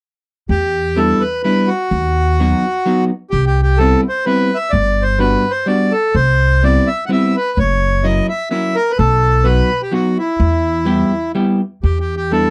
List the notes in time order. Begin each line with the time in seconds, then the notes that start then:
0.49 E2 G4
0.96 G3 B3 D4 E4 A4
1.20 B4
1.43 G3 B3 D4 E4 B4
1.67 F#4
1.91 D#2
2.40 F#3 B3 D#4 F#4
2.86 F#3 B3 D#4 F#4
3.31 C2 G4
3.47 G4
3.62 G4
3.78 G3 B3 C4 E4 A4
4.09 C5
4.26 G3 B3 C4 E4 B4
4.54 E5
4.70 G1 D5
5.02 C5
5.19 G3 B3 D4 F#4 B4
5.51 C5
5.66 G3 B3 D4 F#4 D5
5.92 A4
6.15 C2 C5
6.63 G3 B3 C4 E4 D5
6.87 E5
7.06 G3 C4 F#5
7.10 B3 E4 E5
7.36 B4
7.57 F#1 C#5
8.04 F#3 A#3 C#4 E4 D#5
8.29 E5
8.50 F#3 A#3 C#4 E4 E5
8.76 A#4
8.91 B4
8.99 B1 A4
9.44 F#3 B3 D#4 F#4 B4
9.82 G4
9.91 F#3 B3 D#4 F#4
10.18 E4
10.40 E2
10.85 G3 B3 E4 G4
11.35 G3 B3 E4 G4
11.83 E2 G4
12.00 G4
12.17 G4
12.31 G3 B3 D4 E4 A4